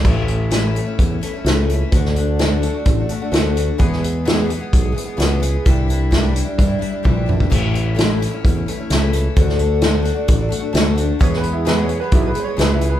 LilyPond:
<<
  \new Staff \with { instrumentName = "Upright piano" } { \time 4/4 \key a \major \tempo 4 = 129 r1 | r1 | r1 | r1 |
r1 | r1 | \tuplet 3/2 { cis''8 b'8 e'8 b'8 cis''8 b'8 e'8 b'8 <c'' cis''>8 b'8 e'8 b'8 } | }
  \new Staff \with { instrumentName = "Twelve-string acoustic guitar" } { \time 4/4 \key a \major <a, e a cis' e'>8 <e a cis' e'>8 <a, e a cis' e'>8 <e a cis' e'>16 <a cis' e'>8 <a cis' e'>16 <e a cis' e'>16 <a cis' e'>16 <a, e a cis' e'>8 <e a cis' e'>8 | <d a d' fis'>8 <d a d' fis'>8 <d a d' fis'>8 <d a d' fis'>16 <a d' fis'>8 <a d' fis'>16 <d a d' fis'>16 <a d' fis'>16 <d a d' fis'>8 <d a d' fis'>8 | <e, b, e gis b gis'>8 <e gis b gis'>8 <e, b, e gis b gis'>8 <e gis b gis'>16 <e gis b gis'>8 <e gis b gis'>16 <e gis b gis'>16 <e gis b gis'>16 <e, b, e gis b gis'>8 <e gis b gis'>8 | <c e g d' e'>8 <e g d' e'>8 <c e g d' e'>8 <e g d' e'>16 <g d' e'>8 <g d' e'>16 <e g d' e'>16 <g d' e'>16 <c e g d' e'>8 <e g d' e'>8 |
<a, e a cis' e'>8 <e a cis' e'>8 <a, e a cis' e'>8 <e a cis' e'>16 <a cis' e'>8 <a cis' e'>16 <e a cis' e'>16 <a cis' e'>16 <a, e a cis' e'>8 <e a cis' e'>8 | <d a d' fis'>8 <d a d' fis'>8 <d a d' fis'>8 <d a d' fis'>16 <a d' fis'>8 <a d' fis'>16 <d a d' fis'>16 <a d' fis'>16 <d a d' fis'>8 <d a d' fis'>8 | <e, b, e gis b gis'>8 <e gis b gis'>8 <e, b, e gis b gis'>8 <e gis b gis'>16 <e gis b gis'>8 <e gis b gis'>16 <e gis b gis'>16 <e gis b gis'>16 <e, b, e gis b gis'>8 <e gis b gis'>8 | }
  \new Staff \with { instrumentName = "Fingered electric bass" } { \clef bass \time 4/4 \key a \major a,,2 e,8 r8 cis,4 | d,2 a,,8 r8 d,4 | e,2 b,,8 r8 cis,4 | c,2 g,8 r8 bes,,4 |
a,,2 e,8 r8 cis,4 | d,2 a,,8 r8 d,4 | e,2 b,,8 r8 cis,4 | }
  \new DrumStaff \with { instrumentName = "Drums" } \drummode { \time 4/4 <cymc bd>8 hh8 <hh sn>8 hh8 <hh bd>8 hh8 <hh sn>8 hh8 | <hh bd>16 sn16 hh8 <hh sn>8 hh8 <hh bd>8 hh8 <hh sn>8 hh8 | <hh bd>16 sn16 hh8 <hh sn>8 hh8 <hh bd>8 hh8 <hh sn>8 hh8 | <hh bd>8 hh8 <hh bd sn>8 hh8 <hh bd>8 hh8 <bd tommh>8 toml16 bd16 |
<cymc hh bd>8 hh8 <hh sn>8 hh8 <hh bd>8 hh8 <hh sn>8 hh8 | <hh bd>16 sn16 hh8 <hh sn>8 hh8 <hh bd>8 hh8 <hh sn>8 hh8 | <hh bd>16 sn16 hh8 <hh sn>8 hh8 <hh bd>8 hh8 <hh sn>8 hh8 | }
>>